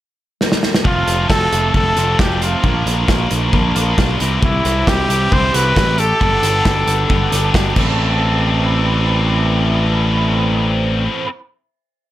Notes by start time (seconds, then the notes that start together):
0.41 snare
0.52 snare
0.63 snare
0.74 snare
0.84 F1 F3 A3 C4 F4, kick
1.08 F1, closed hi-hat
1.30 F1 A4, kick, snare
1.53 F1, closed hi-hat
1.74 F1 F3 A3 C4 A4, kick
1.96 F1 A3 C4 F4, closed hi-hat
2.19 F1 A3 C4 F4 G4, kick, snare
2.42 F4, closed hi-hat
2.63 A#1 F3 A#3 D4 F4, kick
2.86 A#1, closed hi-hat
3.08 A#1, kick, snare
3.31 A#1, closed hi-hat
3.52 A#1 F3 A#3 D4, kick
3.75 A#1 F3 A#3 D4 F4, closed hi-hat
3.96 B1 F3 A#3 D4 F4, kick, snare
4.20 C2 E3 C4 E4 G4, closed hi-hat
4.41 C2 E4 G4 E5 G5 E6, kick
4.65 C2, closed hi-hat
4.87 C2 G4, kick, snare
5.09 C2 E3 C4 E4 G4, closed hi-hat
5.31 C2 E3 C4 E4 G4 C5, kick
5.52 C2 E3 C4 E4 G4 B4, closed hi-hat
5.76 A1, kick, snare
5.98 A4, closed hi-hat
6.20 G1 B3 D4 G4 A4 B5 D6, kick
6.43 G1, closed hi-hat
6.65 G1, kick, snare
6.87 G1, closed hi-hat
7.09 G1 B3 D4 G4, kick
7.31 G1 B3 D4 G4, closed hi-hat
7.54 G1 B3 D4 G4, kick, snare
7.74 A1 E3 C4 E4 B4 D5 G5, kick, crash
7.78 A3 C4 A4